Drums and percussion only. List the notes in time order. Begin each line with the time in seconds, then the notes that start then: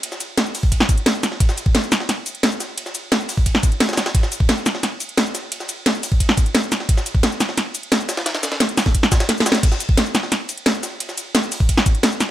0.03 closed hi-hat, ride
0.12 snare, shaker
0.20 closed hi-hat, ride, shaker
0.38 snare, closed hi-hat, ride
0.46 shaker
0.55 closed hi-hat, open hi-hat, ride, shaker
0.63 kick
0.72 kick, closed hi-hat, ride
0.80 snare
0.89 kick, closed hi-hat, ride, shaker
0.98 closed hi-hat
1.06 snare, closed hi-hat, ride
1.15 shaker
1.23 snare, closed hi-hat, ride, shaker
1.32 snare
1.40 kick, closed hi-hat, ride
1.49 snare, shaker
1.58 closed hi-hat, ride, shaker
1.66 kick
1.75 snare, closed hi-hat, ride
1.83 shaker
1.92 snare, closed hi-hat, ride, shaker
2.00 snare
2.09 snare, closed hi-hat, ride
2.26 closed hi-hat, ride, shaker
2.35 closed hi-hat
2.43 snare, closed hi-hat, ride
2.52 ride, shaker
2.60 snare, closed hi-hat, ride, shaker
2.77 closed hi-hat, ride
2.86 snare, shaker
2.95 closed hi-hat, ride, shaker
3.12 snare, closed hi-hat, ride
3.20 shaker
3.29 closed hi-hat, open hi-hat, ride, shaker
3.37 kick
3.46 kick, closed hi-hat, ride
3.55 snare
3.63 kick, closed hi-hat, ride, shaker
3.72 closed hi-hat
3.80 snare, closed hi-hat, ride
3.89 snare, ride, shaker
3.93 snare, ride
3.97 snare, closed hi-hat, ride, shaker
4.06 snare, ride
4.15 kick, closed hi-hat, ride
4.23 snare, shaker
4.32 closed hi-hat, ride, shaker
4.40 kick
4.49 snare, closed hi-hat, ride
4.58 shaker
4.66 snare, closed hi-hat, ride, shaker
4.75 snare
4.83 snare, closed hi-hat, ride
5.00 closed hi-hat, ride, shaker
5.09 closed hi-hat
5.17 snare, closed hi-hat, ride
5.26 ride, shaker
5.35 snare, closed hi-hat, ride, shaker
5.52 closed hi-hat, ride
5.60 snare, shaker
5.69 closed hi-hat, ride, shaker
5.86 snare, closed hi-hat, ride
5.95 shaker
6.03 closed hi-hat, open hi-hat, ride, shaker
6.12 kick
6.20 kick, closed hi-hat, ride
6.29 snare
6.37 kick, closed hi-hat, ride, shaker
6.46 closed hi-hat
6.55 snare, closed hi-hat, ride
6.63 shaker
6.72 snare, closed hi-hat, ride, shaker
6.80 snare
6.89 kick, closed hi-hat, ride
6.97 snare, shaker
7.06 closed hi-hat, ride, shaker
7.15 kick
7.23 snare, closed hi-hat, ride
7.32 shaker
7.40 snare, closed hi-hat, ride, shaker
7.49 snare
7.57 snare, closed hi-hat, ride
7.75 closed hi-hat, ride, shaker
7.83 closed hi-hat
7.92 snare, closed hi-hat, ride
8.00 ride, shaker
8.09 snare, closed hi-hat, ride, shaker
8.17 snare, ride
8.26 snare, closed hi-hat, ride
8.35 snare, ride, shaker
8.43 snare, closed hi-hat, ride, shaker
8.52 snare, ride
8.60 snare, closed hi-hat, ride
8.69 closed hi-hat, shaker
8.77 snare, closed hi-hat, open hi-hat, ride, shaker
8.86 kick, snare
8.95 kick, closed hi-hat, ride
9.03 snare, shaker
9.12 kick, snare, closed hi-hat, ride, shaker
9.20 snare, closed hi-hat, ride
9.29 snare, closed hi-hat, ride
9.38 snare, shaker
9.46 snare, closed hi-hat, ride, shaker
9.52 snare
9.55 snare, closed hi-hat, ride
9.63 kick, closed hi-hat, crash, ride
9.72 snare, shaker
9.80 closed hi-hat, ride, shaker
9.89 kick
9.97 snare, closed hi-hat, ride
10.06 shaker
10.15 snare, closed hi-hat, ride, shaker
10.23 snare
10.32 snare, closed hi-hat, ride
10.49 closed hi-hat, ride, shaker
10.58 closed hi-hat
10.66 snare, closed hi-hat, ride
10.75 ride, shaker
10.83 snare, closed hi-hat, ride, shaker
11.00 closed hi-hat, ride
11.09 snare, shaker
11.17 closed hi-hat, ride, shaker
11.35 snare, closed hi-hat, ride
11.43 shaker
11.52 closed hi-hat, open hi-hat, ride, shaker
11.60 kick
11.69 kick, closed hi-hat, ride
11.77 snare
11.86 kick, closed hi-hat, ride, shaker
11.95 closed hi-hat
12.03 snare, closed hi-hat, ride
12.12 shaker
12.20 snare, closed hi-hat, ride, shaker